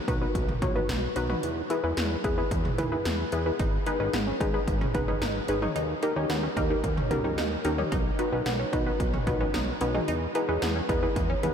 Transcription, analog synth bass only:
0, 0, Header, 1, 2, 480
1, 0, Start_track
1, 0, Tempo, 540541
1, 1273, Time_signature, 4, 2, 24, 8
1, 10247, End_track
2, 0, Start_track
2, 0, Title_t, "Analog synth bass"
2, 0, Program_c, 0, 38
2, 71, Note_on_c, 0, 35, 99
2, 239, Note_off_c, 0, 35, 0
2, 311, Note_on_c, 0, 35, 103
2, 479, Note_off_c, 0, 35, 0
2, 550, Note_on_c, 0, 34, 92
2, 719, Note_off_c, 0, 34, 0
2, 791, Note_on_c, 0, 35, 106
2, 960, Note_off_c, 0, 35, 0
2, 1032, Note_on_c, 0, 35, 103
2, 1200, Note_off_c, 0, 35, 0
2, 1272, Note_on_c, 0, 40, 99
2, 1440, Note_off_c, 0, 40, 0
2, 1632, Note_on_c, 0, 40, 97
2, 1716, Note_off_c, 0, 40, 0
2, 1752, Note_on_c, 0, 40, 104
2, 1920, Note_off_c, 0, 40, 0
2, 1990, Note_on_c, 0, 40, 97
2, 2159, Note_off_c, 0, 40, 0
2, 2231, Note_on_c, 0, 40, 110
2, 2399, Note_off_c, 0, 40, 0
2, 2472, Note_on_c, 0, 39, 96
2, 2640, Note_off_c, 0, 39, 0
2, 2712, Note_on_c, 0, 40, 98
2, 2880, Note_off_c, 0, 40, 0
2, 2952, Note_on_c, 0, 40, 102
2, 3120, Note_off_c, 0, 40, 0
2, 3192, Note_on_c, 0, 32, 107
2, 3360, Note_off_c, 0, 32, 0
2, 3552, Note_on_c, 0, 32, 99
2, 3636, Note_off_c, 0, 32, 0
2, 3672, Note_on_c, 0, 32, 99
2, 3840, Note_off_c, 0, 32, 0
2, 3911, Note_on_c, 0, 32, 93
2, 4080, Note_off_c, 0, 32, 0
2, 4151, Note_on_c, 0, 32, 107
2, 4320, Note_off_c, 0, 32, 0
2, 4391, Note_on_c, 0, 30, 87
2, 4559, Note_off_c, 0, 30, 0
2, 4632, Note_on_c, 0, 32, 97
2, 4800, Note_off_c, 0, 32, 0
2, 4872, Note_on_c, 0, 32, 99
2, 5040, Note_off_c, 0, 32, 0
2, 5112, Note_on_c, 0, 39, 107
2, 5280, Note_off_c, 0, 39, 0
2, 5472, Note_on_c, 0, 39, 98
2, 5556, Note_off_c, 0, 39, 0
2, 5592, Note_on_c, 0, 39, 103
2, 5760, Note_off_c, 0, 39, 0
2, 5831, Note_on_c, 0, 39, 104
2, 5999, Note_off_c, 0, 39, 0
2, 6071, Note_on_c, 0, 39, 106
2, 6240, Note_off_c, 0, 39, 0
2, 6313, Note_on_c, 0, 37, 91
2, 6553, Note_on_c, 0, 39, 108
2, 6566, Note_off_c, 0, 37, 0
2, 6721, Note_off_c, 0, 39, 0
2, 6793, Note_on_c, 0, 39, 102
2, 6961, Note_off_c, 0, 39, 0
2, 7032, Note_on_c, 0, 35, 107
2, 7200, Note_off_c, 0, 35, 0
2, 7393, Note_on_c, 0, 35, 97
2, 7476, Note_off_c, 0, 35, 0
2, 7513, Note_on_c, 0, 35, 103
2, 7681, Note_off_c, 0, 35, 0
2, 7751, Note_on_c, 0, 35, 99
2, 7920, Note_off_c, 0, 35, 0
2, 7991, Note_on_c, 0, 35, 102
2, 8159, Note_off_c, 0, 35, 0
2, 8231, Note_on_c, 0, 34, 88
2, 8399, Note_off_c, 0, 34, 0
2, 8473, Note_on_c, 0, 35, 107
2, 8641, Note_off_c, 0, 35, 0
2, 8713, Note_on_c, 0, 35, 102
2, 8881, Note_off_c, 0, 35, 0
2, 8953, Note_on_c, 0, 40, 98
2, 9121, Note_off_c, 0, 40, 0
2, 9313, Note_on_c, 0, 40, 100
2, 9397, Note_off_c, 0, 40, 0
2, 9433, Note_on_c, 0, 40, 104
2, 9601, Note_off_c, 0, 40, 0
2, 9671, Note_on_c, 0, 40, 102
2, 9839, Note_off_c, 0, 40, 0
2, 9911, Note_on_c, 0, 40, 107
2, 10080, Note_off_c, 0, 40, 0
2, 10153, Note_on_c, 0, 39, 102
2, 10247, Note_off_c, 0, 39, 0
2, 10247, End_track
0, 0, End_of_file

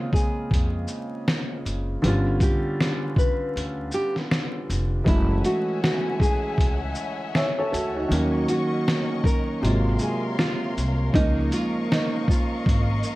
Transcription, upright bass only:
0, 0, Header, 1, 2, 480
1, 0, Start_track
1, 0, Key_signature, -5, "major"
1, 0, Tempo, 759494
1, 1280, Time_signature, 4, 2, 24, 8
1, 8313, End_track
2, 0, Start_track
2, 0, Title_t, "Upright bass"
2, 0, Program_c, 0, 32
2, 325, Note_on_c, 0, 41, 81
2, 536, Note_off_c, 0, 41, 0
2, 1045, Note_on_c, 0, 30, 78
2, 1256, Note_off_c, 0, 30, 0
2, 1289, Note_on_c, 0, 31, 105
2, 1498, Note_off_c, 0, 31, 0
2, 2249, Note_on_c, 0, 38, 81
2, 2458, Note_off_c, 0, 38, 0
2, 2967, Note_on_c, 0, 29, 89
2, 3177, Note_off_c, 0, 29, 0
2, 3202, Note_on_c, 0, 30, 95
2, 3414, Note_off_c, 0, 30, 0
2, 4161, Note_on_c, 0, 37, 74
2, 4374, Note_off_c, 0, 37, 0
2, 4886, Note_on_c, 0, 38, 82
2, 5096, Note_off_c, 0, 38, 0
2, 5124, Note_on_c, 0, 39, 92
2, 5335, Note_off_c, 0, 39, 0
2, 6084, Note_on_c, 0, 32, 102
2, 6295, Note_off_c, 0, 32, 0
2, 6806, Note_on_c, 0, 36, 78
2, 7016, Note_off_c, 0, 36, 0
2, 7043, Note_on_c, 0, 37, 106
2, 7255, Note_off_c, 0, 37, 0
2, 8005, Note_on_c, 0, 32, 84
2, 8216, Note_off_c, 0, 32, 0
2, 8313, End_track
0, 0, End_of_file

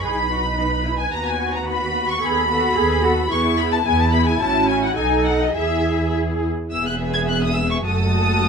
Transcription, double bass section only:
0, 0, Header, 1, 2, 480
1, 0, Start_track
1, 0, Key_signature, 4, "major"
1, 0, Tempo, 546946
1, 30, Time_signature, 2, 2, 24, 8
1, 3870, Tempo, 576923
1, 6270, Tempo, 553506
1, 7303, End_track
2, 0, Start_track
2, 0, Title_t, "Double bass section"
2, 0, Program_c, 0, 48
2, 26, Note_on_c, 0, 35, 43
2, 985, Note_on_c, 0, 39, 48
2, 989, Note_off_c, 0, 35, 0
2, 1925, Note_off_c, 0, 39, 0
2, 1952, Note_on_c, 0, 39, 52
2, 2370, Note_off_c, 0, 39, 0
2, 2428, Note_on_c, 0, 39, 55
2, 2850, Note_off_c, 0, 39, 0
2, 2908, Note_on_c, 0, 40, 57
2, 3333, Note_off_c, 0, 40, 0
2, 3392, Note_on_c, 0, 40, 62
2, 3814, Note_off_c, 0, 40, 0
2, 3869, Note_on_c, 0, 33, 54
2, 4305, Note_off_c, 0, 33, 0
2, 4342, Note_on_c, 0, 35, 56
2, 4822, Note_off_c, 0, 35, 0
2, 4825, Note_on_c, 0, 40, 49
2, 5606, Note_off_c, 0, 40, 0
2, 5791, Note_on_c, 0, 28, 56
2, 6716, Note_off_c, 0, 28, 0
2, 6750, Note_on_c, 0, 30, 62
2, 7303, Note_off_c, 0, 30, 0
2, 7303, End_track
0, 0, End_of_file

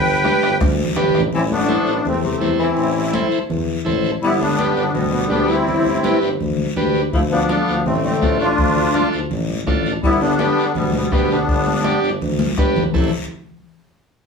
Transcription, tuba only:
0, 0, Header, 1, 2, 480
1, 0, Start_track
1, 0, Key_signature, 0, "minor"
1, 0, Tempo, 362976
1, 1752, Time_signature, 4, 2, 24, 8
1, 18863, End_track
2, 0, Start_track
2, 0, Title_t, "Tuba"
2, 0, Program_c, 0, 58
2, 0, Note_on_c, 0, 31, 101
2, 415, Note_off_c, 0, 31, 0
2, 559, Note_on_c, 0, 31, 99
2, 749, Note_off_c, 0, 31, 0
2, 807, Note_on_c, 0, 38, 97
2, 1185, Note_off_c, 0, 38, 0
2, 1280, Note_on_c, 0, 31, 86
2, 1492, Note_off_c, 0, 31, 0
2, 1516, Note_on_c, 0, 33, 97
2, 1730, Note_off_c, 0, 33, 0
2, 1753, Note_on_c, 0, 33, 93
2, 2327, Note_off_c, 0, 33, 0
2, 2467, Note_on_c, 0, 33, 89
2, 2660, Note_off_c, 0, 33, 0
2, 2705, Note_on_c, 0, 40, 87
2, 3090, Note_off_c, 0, 40, 0
2, 3181, Note_on_c, 0, 40, 87
2, 3567, Note_off_c, 0, 40, 0
2, 3658, Note_on_c, 0, 33, 87
2, 4237, Note_off_c, 0, 33, 0
2, 4619, Note_on_c, 0, 40, 88
2, 5005, Note_off_c, 0, 40, 0
2, 5101, Note_on_c, 0, 33, 86
2, 5486, Note_off_c, 0, 33, 0
2, 5575, Note_on_c, 0, 31, 88
2, 6154, Note_off_c, 0, 31, 0
2, 6298, Note_on_c, 0, 31, 88
2, 6492, Note_off_c, 0, 31, 0
2, 6536, Note_on_c, 0, 38, 90
2, 6922, Note_off_c, 0, 38, 0
2, 7016, Note_on_c, 0, 38, 86
2, 7402, Note_off_c, 0, 38, 0
2, 7497, Note_on_c, 0, 31, 86
2, 8074, Note_off_c, 0, 31, 0
2, 8223, Note_on_c, 0, 31, 83
2, 8414, Note_off_c, 0, 31, 0
2, 8463, Note_on_c, 0, 38, 90
2, 8846, Note_off_c, 0, 38, 0
2, 8954, Note_on_c, 0, 38, 86
2, 9333, Note_off_c, 0, 38, 0
2, 9432, Note_on_c, 0, 38, 94
2, 10004, Note_off_c, 0, 38, 0
2, 10150, Note_on_c, 0, 38, 91
2, 10339, Note_off_c, 0, 38, 0
2, 10392, Note_on_c, 0, 33, 92
2, 10772, Note_off_c, 0, 33, 0
2, 10869, Note_on_c, 0, 33, 87
2, 11251, Note_off_c, 0, 33, 0
2, 11350, Note_on_c, 0, 38, 94
2, 11924, Note_off_c, 0, 38, 0
2, 12072, Note_on_c, 0, 38, 79
2, 12261, Note_off_c, 0, 38, 0
2, 12313, Note_on_c, 0, 33, 89
2, 12694, Note_off_c, 0, 33, 0
2, 12788, Note_on_c, 0, 33, 86
2, 13171, Note_off_c, 0, 33, 0
2, 13266, Note_on_c, 0, 31, 90
2, 13842, Note_off_c, 0, 31, 0
2, 14227, Note_on_c, 0, 38, 96
2, 14611, Note_off_c, 0, 38, 0
2, 14709, Note_on_c, 0, 38, 81
2, 15093, Note_off_c, 0, 38, 0
2, 15186, Note_on_c, 0, 31, 96
2, 15764, Note_off_c, 0, 31, 0
2, 15910, Note_on_c, 0, 31, 88
2, 16102, Note_off_c, 0, 31, 0
2, 16153, Note_on_c, 0, 38, 94
2, 16536, Note_off_c, 0, 38, 0
2, 16634, Note_on_c, 0, 31, 87
2, 17017, Note_off_c, 0, 31, 0
2, 17116, Note_on_c, 0, 33, 80
2, 17338, Note_off_c, 0, 33, 0
2, 18863, End_track
0, 0, End_of_file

